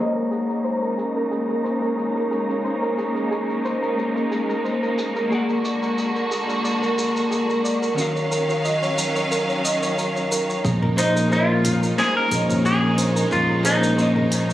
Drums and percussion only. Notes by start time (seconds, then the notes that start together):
0.17 shaker
0.32 shaker
0.50 shaker
0.66 shaker
0.83 shaker
0.99 shaker
1.16 shaker
1.32 shaker
1.50 shaker
1.66 shaker
1.83 shaker
1.99 shaker
2.17 shaker
2.32 shaker
2.50 shaker
2.65 shaker
2.83 shaker
2.98 shaker
3.16 shaker
3.32 shaker
3.50 shaker
3.65 shaker
3.83 shaker
3.99 shaker
4.17 shaker
4.32 shaker
4.50 shaker
4.65 shaker
4.83 shaker
4.98 shaker
5.16 shaker
5.32 shaker
5.49 shaker
5.65 shaker
5.83 shaker
5.98 shaker
6.16 shaker
6.32 shaker
6.49 shaker
6.65 shaker
6.83 shaker
6.99 shaker
7.16 shaker
7.32 shaker
7.50 shaker
7.65 shaker
7.83 shaker
7.98 shaker
8.16 shaker
8.32 shaker
8.50 shaker
8.65 shaker
8.83 shaker
8.98 shaker
9.16 shaker
9.32 shaker
9.49 shaker
9.65 shaker
9.83 shaker
9.98 shaker
10.16 shaker
10.32 shaker
10.50 shaker
10.65 kick, shaker
10.83 mid tom
10.98 closed hi-hat, shaker
11.17 shaker
11.32 shaker
11.65 closed hi-hat, mid tom, shaker
11.83 shaker
11.98 snare, shaker
12.31 kick, closed hi-hat, shaker
12.50 mid tom, shaker
12.66 shaker
12.98 closed hi-hat, shaker
13.16 shaker
13.31 kick, mid tom, shaker
13.65 closed hi-hat, shaker
13.83 shaker
13.99 shaker
14.16 mid tom
14.32 closed hi-hat, shaker
14.50 shaker